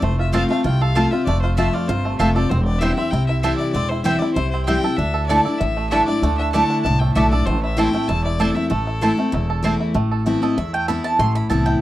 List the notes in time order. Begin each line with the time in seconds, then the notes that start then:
0.02 F1 F2 A3 C5
0.19 F4 E5
0.33 F3 A3 C4 F4 C5 F5 A5
0.49 A3 C4 F4 F5
0.64 C2 C3 F4 G5
0.81 A4 F5
0.95 F3 A3 C4 F4 C5 A5
1.11 C4 F4 E5
1.25 F1 F2 A3 D5
1.42 F4 C5
1.57 F3 A3 C4 F4 C5 E5 A5
1.73 F4 D5
1.88 G1 C3 F4 C5
2.05 A3
2.19 F1 F3 A3 C4 F4 C5 E5 A5
2.35 C4 F4 A4 D5
2.50 E1 E2 C4 C5
2.65 D5
2.79 E3 G3 C4 E4 C5 E5 G5
2.96 C4 E4 E5
3.11 C2 C3 E4 G5
3.27 E4 E5
3.42 E3 G3 C4 E4 A4 C5 E5 G5
3.58 E4 D5
3.73 E1 E2 C4 D5
3.89 E4 C5
4.04 E3 G3 C4 E4 C5 E5 G5
4.19 E4 D5
4.23 C4
4.34 C2 C3 E4 C5
4.51 C4 C5
4.65 E3 G3 C4 E4 C5 G5
4.84 C4 E4 A4
4.97 D2 D3 D4 E5
5.14 A4
5.27 D3 A3 E4 D5 A5
5.31 D4 E4
5.45 D4 E4 A4
5.58 A1 A2 E4 E5
5.77 A3
5.90 D3 A3 D4 E4 D5 E5 A5
6.06 D4 E4 D5
6.22 D2 D3 A3
6.38 D4 E5
6.52 D3 A3 D4 E4 D5 A5
6.70 D4
6.83 C2 A2 E4 A5
6.99 A3 G5
7.14 B1 D3 A3 D4 E4 D5 E5 A5
7.31 D4 E4 A4 D5
7.46 A1 A2 A3 C5
7.63 E4 E5
7.77 E3 A3 C4 E4 C5 G5 A5
7.93 A3 C4 E4
8.08 E1 E2 E4 A5
8.24 E4 D5
8.39 E3 A3 C4 E4 A4 C5 A5
8.55 C4 E4 E5
8.70 A1 A2 A3 A4
8.87 E4
9.01 E3 A3 C4 E4 C5 A5
9.18 A3 C4 E4
9.32 E1 E2 E4
9.50 A4
9.63 E3 A3 C4 E4 C5 A5
9.80 E4
9.94 A1 A2 A3
10.12 A4
10.26 E3 A3 B3 C4 E4
10.42 C4 E4 A4 D#5
10.58 E2 E4 E5
10.73 A3 G5
10.88 E3 B3 C4 E4 A4 B5
11.04 E4 A5
11.19 A1 A2 A3 C6
11.35 E4 B5
11.50 C2 E3 B3 C4 E4 A4 A5
11.66 E4 G5